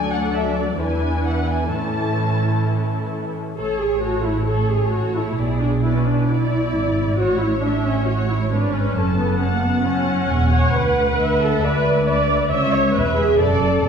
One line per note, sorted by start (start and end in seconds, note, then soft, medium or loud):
0.00 0.76 D2 soft
0.00 0.76 F#3 soft
0.00 0.76 D4 soft
0.00 0.76 A4 soft
0.00 0.76 D5 soft
0.00 0.11 G#5 medium
0.13 0.35 F#5 medium
0.35 0.57 E5 medium
0.57 0.65 D5 medium
0.79 1.72 E2 soft
0.79 1.71 E3 soft
0.79 1.70 D4 soft
0.79 1.71 E4 soft
0.79 1.72 B4 soft
0.79 1.25 G#5 medium
1.26 1.49 F#5 medium
1.49 1.72 G#5 medium
1.72 3.37 A2 soft
1.72 3.34 E3 soft
1.72 3.38 C#4 soft
1.72 3.34 E4 soft
1.72 3.34 A4 soft
1.72 3.12 A5 medium
3.57 5.35 A1 soft
3.57 5.35 A2 soft
3.57 3.79 A4 medium
3.57 4.44 C#5 soft
3.57 4.00 C#5 soft
3.81 4.03 G#4 medium
4.03 4.25 F#4 medium
4.03 5.36 A4 soft
4.25 4.48 E4 medium
4.48 4.70 A4 medium
4.48 5.37 C#5 soft
4.70 4.93 G#4 medium
4.93 5.15 F#4 medium
5.15 5.61 E4 medium
5.38 6.71 B1 soft
5.38 6.71 B2 soft
5.38 5.83 G#4 soft
5.38 5.82 D5 soft
5.60 5.68 D4 medium
5.83 5.94 E4 medium
5.83 6.28 B4 soft
5.83 6.27 D5 soft
5.94 6.06 C#4 medium
6.05 6.28 D4 medium
6.27 7.18 E4 medium
6.27 7.17 D5 soft
6.27 7.19 D5 medium
6.73 7.19 G#1 soft
6.73 7.19 G#2 soft
7.17 8.50 A1 soft
7.17 8.49 A2 soft
7.17 7.40 F#4 medium
7.17 8.97 C#5 medium
7.17 7.63 C#5 soft
7.40 7.63 E4 medium
7.62 7.85 D4 medium
7.62 8.08 E5 soft
7.86 8.08 C#4 medium
8.07 8.30 F#4 medium
8.07 8.51 C#5 medium
8.30 8.52 E4 medium
8.52 8.97 G#1 soft
8.52 8.97 G#2 soft
8.52 8.74 D4 medium
8.52 8.96 B4 medium
8.74 9.19 C#4 medium
8.96 10.27 F#1 medium
8.96 10.27 F#2 medium
8.96 9.41 A4 soft
8.96 9.40 A5 medium
9.18 9.40 B3 medium
9.40 9.52 C#4 medium
9.40 11.15 F#5 medium
9.40 9.84 A5 soft
9.52 9.63 A#3 medium
9.62 9.85 B3 medium
9.85 10.51 C#4 medium
9.85 10.29 A5 medium
10.30 10.73 E1 medium
10.30 10.73 E2 soft
10.30 10.74 G#5 medium
10.52 10.73 C#5 medium
10.73 11.60 D2 medium
10.73 11.40 B4 medium
10.73 11.62 F#5 medium
11.19 11.61 E5 medium
11.40 11.62 A4 medium
11.62 12.49 D2 medium
11.62 12.06 B4 medium
11.62 12.06 D5 medium
11.62 12.05 E5 medium
12.06 12.50 B4 medium
12.06 12.50 D5 medium
12.06 12.49 E5 medium
12.51 12.94 C#2 medium
12.51 12.94 C#5 medium
12.51 13.37 E5 medium
12.51 12.73 E5 medium
12.73 12.95 C#5 medium
12.95 13.39 E1 medium
12.95 13.39 E2 medium
12.95 13.17 B4 medium
12.95 13.40 E5 medium
13.17 13.39 G#4 medium
13.39 13.83 F#1 medium
13.39 13.83 F#2 medium
13.39 13.89 A4 medium
13.39 13.89 D5 medium
13.39 13.83 D5 medium
13.83 13.89 E1 medium
13.83 13.89 E2 medium
13.83 13.89 D5 medium